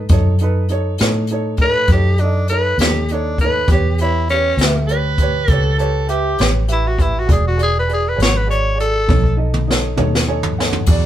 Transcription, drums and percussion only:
0.09 kick, closed hi-hat
0.39 closed hi-hat
0.69 closed hi-hat
0.98 snare, closed hi-hat
1.27 closed hi-hat
1.57 kick, closed hi-hat
1.88 kick, closed hi-hat
2.18 closed hi-hat
2.48 closed hi-hat
2.79 snare, closed hi-hat
3.09 closed hi-hat
3.38 kick, closed hi-hat
3.68 kick, closed hi-hat
3.98 closed hi-hat
4.29 closed hi-hat
4.58 snare, closed hi-hat
4.89 closed hi-hat
5.18 kick, closed hi-hat
5.48 kick, closed hi-hat
5.79 closed hi-hat
6.09 closed hi-hat
6.38 snare, closed hi-hat
6.68 closed hi-hat
6.99 kick, closed hi-hat
7.29 kick, closed hi-hat
7.59 closed hi-hat
7.89 closed hi-hat
8.20 snare, closed hi-hat
8.51 closed hi-hat
8.80 closed hi-hat
9.09 kick, high tom
9.24 kick
9.54 mid tom
9.71 snare
9.97 mid tom
10.15 snare
10.43 floor tom
10.60 snare
10.73 floor tom
10.86 kick, crash

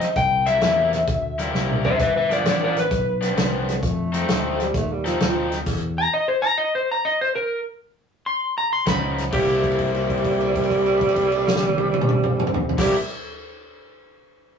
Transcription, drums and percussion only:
0.01 snare, closed hi-hat
0.16 kick, snare, closed hi-hat
0.46 snare, closed hi-hat
0.61 snare, closed hi-hat
0.93 snare, closed hi-hat
1.07 kick, snare, closed hi-hat
1.39 snare, closed hi-hat
1.55 snare
1.70 mid tom
1.85 floor tom
2.00 kick, snare, closed hi-hat
2.31 snare, closed hi-hat
2.46 snare, closed hi-hat
2.77 snare, closed hi-hat
2.91 kick, snare, closed hi-hat
3.22 snare, closed hi-hat
3.37 snare, closed hi-hat
3.69 snare, closed hi-hat
3.83 kick, snare, closed hi-hat
4.14 snare, closed hi-hat
4.28 snare, closed hi-hat
4.60 snare, closed hi-hat
4.74 kick, snare, closed hi-hat
5.06 snare, closed hi-hat
5.20 snare, closed hi-hat
5.52 snare, closed hi-hat
5.66 kick, snare, closed hi-hat, crash
8.86 kick, snare, closed hi-hat
9.18 snare, closed hi-hat
9.33 kick, crash
9.64 kick, crash
9.72 crash
9.79 kick, crash
9.95 crash
10.10 kick, crash
10.18 crash
10.25 kick, crash
10.41 crash
10.55 kick, crash
10.64 crash
10.70 kick, crash
10.86 crash
11.01 kick, crash
11.09 crash
11.16 kick, crash
11.32 crash
11.48 snare
11.56 snare
11.63 high tom
11.78 high tom
11.94 high tom
12.01 mid tom
12.09 mid tom
12.24 mid tom
12.40 mid tom
12.47 mid tom
12.54 floor tom
12.69 floor tom
12.78 kick, snare, crash

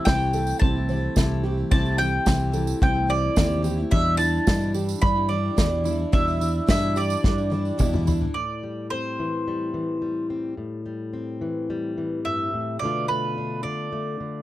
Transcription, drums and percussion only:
0.05 kick, snare, tambourine
0.20 tambourine
0.33 tambourine
0.47 tambourine
0.62 kick
0.89 tambourine
1.16 kick, snare, tambourine
1.72 kick, tambourine
1.85 tambourine
1.98 tambourine
2.26 kick, snare, tambourine
2.40 tambourine
2.53 tambourine
2.67 tambourine
2.82 kick
3.09 tambourine
3.36 kick, snare, tambourine
3.64 tambourine
3.91 kick, tambourine
4.19 tambourine
4.47 kick, snare, tambourine
4.61 tambourine
4.74 tambourine
4.89 tambourine
5.03 kick
5.30 tambourine
5.58 kick, snare, tambourine
5.85 tambourine
6.13 kick, tambourine
6.27 tambourine
6.41 tambourine
6.68 kick, snare, tambourine
6.96 tambourine
7.10 tambourine
7.24 kick, snare, tambourine
7.38 tambourine
7.51 high tom, tambourine
7.65 tambourine
7.79 kick, mid tom, tambourine
7.93 mid tom, tambourine
8.07 floor tom, tambourine
8.22 floor tom

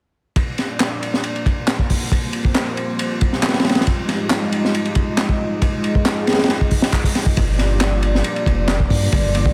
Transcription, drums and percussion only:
0.36 kick, ride
0.58 snare, ride
0.80 snare, clap, ride
1.03 ride
1.14 snare
1.24 ride
1.36 ride
1.46 kick, ride
1.67 snare, clap, ride
1.79 kick
1.90 kick, open hi-hat
2.12 kick, ride
2.33 ride
2.45 kick
2.55 snare, clap, ride
2.77 ride
2.99 ride
3.21 kick, ride
3.33 snare
3.42 snare, clap, ride
3.49 snare, ride
3.54 snare, ride
3.59 snare, ride
3.65 snare, ride
3.69 snare, ride
3.75 snare, ride
3.81 snare, ride
3.87 kick, ride
4.08 snare, ride
4.30 snare, clap, ride
4.52 ride
4.65 snare
4.75 ride
4.85 ride
4.95 kick, ride
5.18 snare, clap, ride
5.29 kick
5.62 kick, ride
5.84 ride
5.95 kick
6.05 snare, clap, ride
6.27 snare, ride
6.32 snare, ride
6.39 snare, ride
6.44 snare, ride
6.49 snare, ride
6.61 kick
6.71 kick, open hi-hat
6.82 snare, ride
6.93 kick, clap
7.04 kick, open hi-hat
7.15 snare, ride
7.26 kick
7.37 kick, ride
7.59 snare, ride
7.81 snare, clap, ride
8.03 ride
8.15 snare
8.24 ride
8.36 ride
8.46 kick, ride
8.68 snare, clap, ride
8.80 kick
8.90 kick, open hi-hat
9.12 kick, ride
9.35 ride
9.46 kick

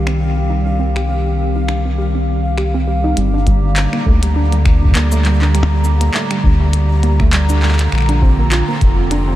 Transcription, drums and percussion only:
0.07 finger snap
0.96 finger snap
1.68 finger snap
2.58 finger snap
3.17 closed hi-hat
3.47 kick, closed hi-hat
3.76 clap, closed hi-hat
3.93 finger snap
4.06 kick
4.23 closed hi-hat
4.52 closed hi-hat
4.65 finger snap, kick
4.82 kick
4.84 kick
4.89 kick
4.91 kick
4.93 kick, clap, closed hi-hat
5.12 cabasa
5.25 clap, closed hi-hat
5.42 clap
5.55 finger snap, closed hi-hat
5.63 percussion blips
5.84 cabasa
6.01 closed hi-hat
6.14 clap
6.31 finger snap, closed hi-hat
6.44 kick
6.73 closed hi-hat
7.03 closed hi-hat
7.20 finger snap, kick
7.33 clap, closed hi-hat
7.49 cabasa
7.63 clap
7.68 clap
7.72 clap
7.79 clap, closed hi-hat
7.82 clap
7.88 clap
7.92 finger snap
7.95 finger snap
7.98 finger snap
8.01 finger snap
8.02 finger snap
8.06 finger snap, closed hi-hat
8.22 kick
8.52 clap, closed hi-hat
8.81 kick, closed hi-hat
9.11 closed hi-hat

